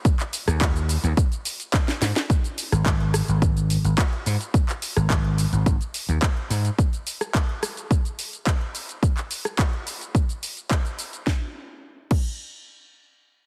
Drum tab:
CC |----------------|----------------|----------------|----------------|
HH |xxoxxxoxxxoxxxox|xxoxxxoxxxoxxxox|xxoxxxoxxxoxxxox|xxoxxxoxxxoxxxox|
SH |xxxxxxxxxxxxxxxx|xxxxx-xxxxxxx-xx|xxxxx-xxxxxxx-xx|xxxxx-xxxxxxx-xx|
CP |-x--x-------x---|----x-------x---|-x--x-------x---|----x-------x---|
SD |---r--------oooo|---r--r---------|---r------------|---r--r---------|
BD |o---o---o---o---|o---o---o---o---|o---o---o---o---|o---o---o---o---|

CC |----------------|------x---------|
HH |xxoxxxoxxxoxxxox|----------------|
SH |xxxxx-xxxxxxxxxx|----------------|
CP |-x--x-------x---|----------------|
SD |---r------------|o---------------|
BD |o---o---o---o---|o-----o---------|